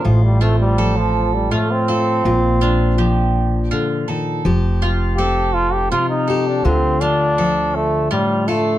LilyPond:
<<
  \new Staff \with { instrumentName = "Mandolin" } { \time 3/4 \key f \mixolydian \tempo 4 = 82 r8 f'8 a'4 f'8 a'8 | r8 f'8 g'4 f'8 a'8 | r8 f'8 a'4 f'8 a'8 | r8 f'8 a'4 f'8 a'8 | }
  \new Staff \with { instrumentName = "Trombone" } { \time 3/4 \key f \mixolydian f16 g16 a16 g8 f8 g16 a16 c'8.~ | c'4.~ c'16 r4 r16 | r4 g'8 f'16 g'16 f'16 ees'8 d'16 | c'8 d'4 a8 g8 a8 | }
  \new Staff \with { instrumentName = "Steel-string acoustic guitar" } { \clef bass \time 3/4 \key f \mixolydian << { f'8 c'2 f'8 | f'8 d'2~ d'8 | g'8 f'2 g'8 | f'8 d'2 f'8 | } \\ { a,4 f4 a,4 | bes,4 f4 d8 ees8 | f4 c'4 c4 | d4 f4 a,4 | } >> }
  \new Staff \with { instrumentName = "Upright bass" } { \clef bass \time 3/4 \key f \mixolydian a,,2 r4 | bes,,2 r4 | f,,2 r4 | d,2 r4 | }
>>